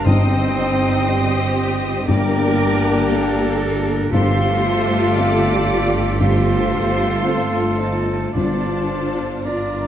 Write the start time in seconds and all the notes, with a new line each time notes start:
Already playing: G1
0.04 G1 G2 G3 C4 D#4 C5 D#5 G5 D#6
1.07 C4 G4 C5
2.06 G1 G2 A#3 D4 G4 A#4 D5 G5 D6
3.11 A#3 G4 A4 D5
4.11 G1 G2 A3 F4 G4 A4 C5 F5 C6
5.14 C4 A4 D5 F5 D6
6.19 G1 G2 A3 F4 A4 C5 F5 C6
7.26 C4 F4 A4 F5
7.79 D#4 A4 C5 A5
8.34 G1 G2 D4 F4 A4 C5 D5 A5
9.44 D4 F4 A#4 D5 F5 A#5